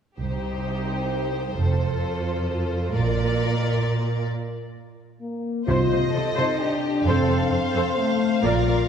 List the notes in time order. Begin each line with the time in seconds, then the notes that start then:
0.19 C2 D#4 G4 C5
1.58 F1 F2 F4 A4
2.93 A#1 A#2 A#4 D5
5.21 A#3
5.67 C2 C3 F4 C5 D#5
5.92 C3 C5
6.14 C3 A4 C5
6.36 C3 D#4 C5
6.60 D4 G4
7.05 F1 F2 C4 A4 C5 F5
7.28 F2 A4 C5
7.51 F2 A4 C5
7.73 F2 A4 C5
7.97 A3 C5
8.42 A#1 A#2 F4 A#4 D5
8.66 A#2 A#4 D5